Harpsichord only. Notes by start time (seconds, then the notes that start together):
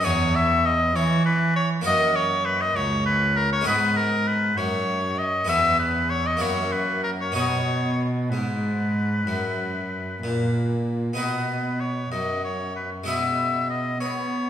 0.01 B3 C#4 G#4
0.05 E2
0.96 E3
1.81 A#3 F#4 A#4
1.86 F#2
2.77 C#2
3.61 G#3 B3 D#4
3.66 G#2 G#4
4.58 F#2
5.45 B3 C#4 G#4
5.49 E2
6.37 A#3 E4 F#4
6.41 F#2
7.32 B3 D#4 F#4
7.36 B2
8.32 G#2
9.27 F#2
10.24 A#2
11.13 B3 D#4 F#4
11.18 B2
12.12 F#2
13.04 G#3 C#4 E4
13.08 B2
14.01 B3